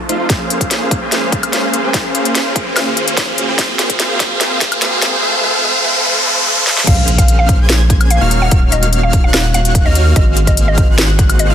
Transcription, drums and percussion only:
0.09 closed hi-hat
0.30 kick, snare, closed hi-hat
0.50 closed hi-hat
0.61 kick, closed hi-hat
0.71 snare, closed hi-hat
0.91 kick, closed hi-hat
1.12 snare, closed hi-hat
1.32 kick, closed hi-hat
1.43 closed hi-hat, high woodblock
1.53 snare, closed hi-hat
1.74 closed hi-hat
1.94 kick, snare, closed hi-hat
2.15 closed hi-hat
2.25 closed hi-hat
2.35 snare, closed hi-hat
2.56 kick, closed hi-hat
2.76 snare, closed hi-hat, high woodblock
2.97 closed hi-hat
3.08 closed hi-hat
3.17 kick, snare, closed hi-hat
3.38 closed hi-hat
3.58 kick, snare, closed hi-hat
3.79 snare, closed hi-hat
3.90 kick, closed hi-hat
4.00 snare, closed hi-hat
4.20 kick, snare, closed hi-hat
4.41 snare, closed hi-hat
4.61 kick, snare, closed hi-hat
4.72 closed hi-hat, high woodblock
4.82 snare, closed hi-hat
5.02 snare, closed hi-hat
6.67 snare
6.77 snare
6.87 kick, closed hi-hat, crash
7.08 closed hi-hat
7.18 kick, closed hi-hat
7.28 closed hi-hat
7.49 kick, closed hi-hat
7.69 snare, closed hi-hat
7.90 kick, closed hi-hat
8.01 closed hi-hat, high woodblock
8.10 closed hi-hat
8.31 closed hi-hat
8.51 kick, closed hi-hat
8.72 closed hi-hat
8.83 closed hi-hat
8.93 closed hi-hat
9.13 kick, closed hi-hat
9.34 snare, closed hi-hat, high woodblock
9.54 closed hi-hat
9.65 closed hi-hat
9.75 kick, closed hi-hat
9.95 closed hi-hat
10.16 kick, closed hi-hat
10.37 closed hi-hat
10.47 kick, closed hi-hat
10.57 closed hi-hat
10.78 kick, closed hi-hat
10.98 snare, closed hi-hat
11.19 kick, closed hi-hat
11.30 closed hi-hat, high woodblock
11.39 closed hi-hat

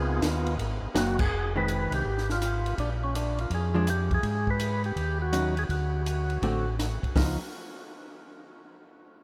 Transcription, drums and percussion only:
0.22 kick, snare, hi-hat pedal, ride
0.47 ride
0.59 kick, ride
0.95 kick, snare, hi-hat pedal, ride
1.19 kick, crash
1.68 hi-hat pedal, ride
1.92 ride
2.05 kick
2.18 snare
2.30 snare
2.42 cross-stick, hi-hat pedal, ride
2.66 ride
2.78 kick, ride
3.15 hi-hat pedal, ride
3.38 ride
3.51 kick, ride
3.87 cross-stick, hi-hat pedal, ride
4.11 kick, ride
4.23 kick, ride
4.47 kick
4.60 hi-hat pedal, ride
4.84 ride
4.96 kick, ride
5.33 cross-stick, hi-hat pedal, ride
5.57 ride
5.69 kick, ride
6.06 hi-hat pedal, ride
6.30 ride
6.42 kick, ride
6.79 cross-stick, snare, hi-hat pedal, ride
7.03 kick, ride
7.16 kick, snare, open hi-hat

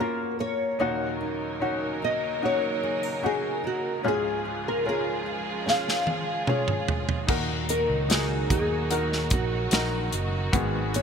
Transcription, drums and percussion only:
5.68 snare
5.88 snare
6.07 high tom
6.47 mid tom
6.68 mid tom
6.88 floor tom
7.09 floor tom
7.28 kick, crash
7.69 closed hi-hat
8.10 snare, closed hi-hat
8.50 kick, closed hi-hat
8.91 closed hi-hat
9.12 snare
9.30 kick, closed hi-hat
9.71 snare, closed hi-hat
10.13 closed hi-hat
10.53 kick, closed hi-hat
10.94 closed hi-hat

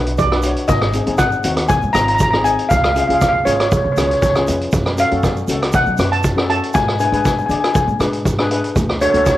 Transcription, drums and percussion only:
0.06 closed hi-hat
0.17 kick, closed hi-hat, shaker
0.32 cross-stick
0.42 closed hi-hat, shaker
0.56 closed hi-hat
0.68 kick, closed hi-hat, shaker
0.82 cross-stick
0.93 closed hi-hat, shaker
1.07 closed hi-hat, shaker
1.18 kick, cross-stick, closed hi-hat, shaker
1.32 shaker
1.44 closed hi-hat, shaker
1.57 cross-stick, closed hi-hat
1.69 kick, closed hi-hat, shaker
1.82 shaker
1.94 cross-stick, closed hi-hat, shaker
2.08 closed hi-hat
2.19 kick, closed hi-hat, shaker
2.33 cross-stick
2.45 closed hi-hat, shaker
2.59 closed hi-hat
2.71 kick, closed hi-hat, shaker
2.84 cross-stick, shaker
2.96 closed hi-hat, shaker
3.10 closed hi-hat
3.21 kick, cross-stick, closed hi-hat, shaker
3.47 closed hi-hat, shaker
3.60 cross-stick, closed hi-hat
3.72 kick, closed hi-hat, shaker
3.97 cross-stick, closed hi-hat, shaker
4.11 closed hi-hat
4.22 kick, closed hi-hat, shaker
4.35 cross-stick, shaker
4.48 closed hi-hat, shaker
4.61 closed hi-hat
4.72 kick, closed hi-hat, shaker
4.86 cross-stick
4.98 closed hi-hat, shaker
5.11 closed hi-hat, shaker
5.23 kick, cross-stick, closed hi-hat, shaker
5.36 shaker
5.48 closed hi-hat, shaker
5.63 cross-stick, closed hi-hat
5.72 kick, closed hi-hat, shaker
5.86 shaker
5.97 cross-stick, closed hi-hat, shaker
6.13 closed hi-hat
6.23 kick, closed hi-hat, shaker
6.38 cross-stick
6.50 closed hi-hat
6.63 closed hi-hat
6.74 kick, closed hi-hat, shaker
6.88 cross-stick
6.99 closed hi-hat, shaker
7.13 closed hi-hat, shaker
7.25 kick, cross-stick, closed hi-hat, shaker
7.38 shaker
7.50 closed hi-hat, shaker
7.64 cross-stick, closed hi-hat
7.75 kick, closed hi-hat, shaker
7.88 shaker
8.00 cross-stick, closed hi-hat, shaker
8.13 closed hi-hat
8.25 kick, closed hi-hat, shaker
8.39 cross-stick
8.51 closed hi-hat
8.64 closed hi-hat
8.76 kick, closed hi-hat, shaker
8.89 cross-stick
9.01 closed hi-hat, shaker
9.14 closed hi-hat, shaker
9.26 kick, cross-stick, closed hi-hat, shaker

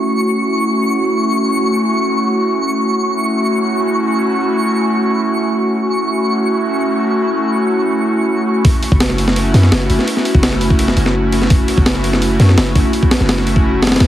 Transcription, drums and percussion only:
8.65 kick, open hi-hat
8.83 open hi-hat
8.92 kick
9.00 snare, open hi-hat
9.10 snare
9.18 open hi-hat
9.28 snare
9.36 open hi-hat
9.54 snare, open hi-hat
9.63 snare
9.72 snare, open hi-hat
9.90 open hi-hat
9.99 snare
10.08 open hi-hat
10.17 snare
10.25 open hi-hat
10.35 kick
10.43 snare, open hi-hat
10.52 snare
10.61 open hi-hat
10.70 kick
10.79 open hi-hat
10.88 snare
10.97 open hi-hat
11.06 snare
11.32 open hi-hat
11.42 snare
11.50 kick, open hi-hat
11.68 open hi-hat
11.78 kick
11.86 snare, open hi-hat
11.95 snare
12.04 open hi-hat
12.13 snare
12.22 open hi-hat
12.40 snare, open hi-hat
12.49 snare
12.58 snare, open hi-hat
12.75 kick, open hi-hat
12.93 open hi-hat
13.03 kick
13.11 snare, open hi-hat
13.20 snare
13.29 snare, open hi-hat
13.38 snare
13.47 open hi-hat
13.56 kick
13.82 snare, open hi-hat
13.87 snare, open hi-hat
13.92 snare, open hi-hat
13.96 snare, open hi-hat
14.00 snare, open hi-hat

